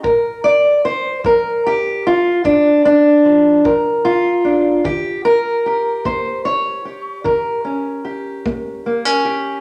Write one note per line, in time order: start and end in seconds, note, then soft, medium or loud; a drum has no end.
0.03 0.76 A#2 medium
0.03 0.44 A#4 soft
0.03 kick medium
0.44 0.84 D5 medium
0.85 1.25 C5 medium
1.24 1.96 F3 medium
1.24 1.65 A#4 medium
1.24 kick medium
1.66 2.06 G4 medium
2.07 2.45 F4 medium
2.44 3.17 A#2 medium
2.44 2.84 D4 medium
2.44 kick medium
2.85 3.65 D4 medium
3.25 3.63 F3 soft
3.64 4.37 F3 medium
3.64 4.85 A#4 soft
3.64 kick medium
4.05 4.85 F4 medium
4.44 4.80 D4 soft
4.84 5.57 D#3 medium
4.84 5.25 G4 medium
4.84 kick medium
5.25 6.05 A#4 medium
5.66 6.85 G4 soft
6.05 6.77 A#3 medium
6.05 6.45 C5 medium
6.05 kick medium
6.45 7.25 C#5 medium
6.85 8.03 G4 soft
7.24 7.97 D#3 medium
7.24 9.61 A#4 soft
7.24 kick medium
7.65 8.86 C#4 soft
8.05 9.24 G4 soft
8.46 8.85 A#3 medium
8.46 kick medium
8.86 9.05 A#3 soft
9.05 9.61 C#4 soft
9.25 9.60 G4 soft